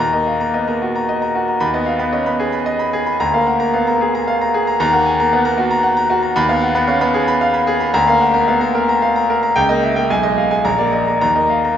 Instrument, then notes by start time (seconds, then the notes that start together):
grand piano
0.00 D#2 A#5
0.13 A#3 D#5
0.27 F5
0.41 A#3 A#5
0.54 B3 D#5
0.68 A#3 A#5
0.82 F#4
0.95 A#5
1.09 D#5
1.22 A#5
1.35 F#4
1.48 A#5
1.60 D#2 B5
1.74 B3 D#5
1.86 F5
1.99 B3 B5
2.13 C#4 D#5
2.26 B3 B5
2.39 G#4
2.52 B5
2.66 D#5
2.79 B5
2.93 G#4
3.06 B5
3.20 D2 A#5
3.34 A#3 F5
3.47 F#5
3.60 A#3 A#5
3.73 B3 F5
3.87 A#3 A#5
4.01 G#4
4.15 A#5
4.28 F5
4.41 A#5
4.54 G#4
4.67 A#5
4.80 D#2 A#5
4.93 A#3 F#5
5.06 G#5
5.20 A#3 A#5
5.33 B3 F#5
5.45 A#3 A#5
5.58 F#4
5.71 A#5
5.83 F#5
5.97 A#5
6.10 F#4
6.23 A#5
6.36 D#2 B5
6.49 B3 F5
6.62 F#5
6.75 B3 B5
6.88 C#4 F5
7.01 B3 B5
7.14 G#4
7.28 B5
7.41 F5
7.54 B5
7.67 G#4
7.80 B5
7.94 D2 A#5
8.08 A#3 F5
8.21 F#5
8.34 A#3 A#5
8.48 B3 F5
8.61 A#3 A#5
8.75 A#4
8.89 A#5
9.02 F5
9.16 A#5
9.30 A#4
9.43 A#5
9.56 C#2 G5
9.69 A#3 D#5
9.83 E5
9.96 A#3 G5
10.10 B1 G#5
10.23 G#3 D#5
10.38 F5
10.51 G#3 G#5
10.65 A#1 A#5
10.79 A#3 D5
10.93 D#5
11.07 A#3 A#5
11.21 D#2 A#5
11.36 A#3 D#5
11.50 F5
11.65 A#3 A#5